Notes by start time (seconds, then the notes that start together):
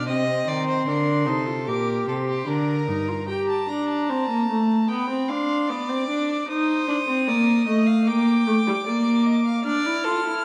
0.07 C3 C4 D#5 D#6
0.48 D#3 D5 C6
0.68 C5
0.87 D3 D4 A#4
1.27 C3 D#4 A4
1.47 F4
1.66 A#2 G4 A#4 D6
2.07 C3 A4 C6
2.29 G4
2.47 D3 D4 A#4 A#5
2.88 G2 D#4
3.08 F4
3.28 G4 G5 A#5
3.49 A5
3.69 D4 A#5
3.88 A5
4.10 C4
4.29 A#3
4.50 A3
4.88 B3 G5 B5
5.09 C4
5.28 D4 F5 C6
5.68 B3 D5 D6
5.89 C4
6.08 D4
6.48 D#4 C5 D#6
6.88 D4
7.07 C4
7.28 A#3 D5
7.67 A3 D#5
7.87 F5
8.07 A#3 G5 D6
8.46 A3
8.67 G3
8.86 A#3 D5
9.26 D#5
9.45 F5
9.64 D4 D5 F6
9.86 E4
10.04 F4 A4
10.25 E4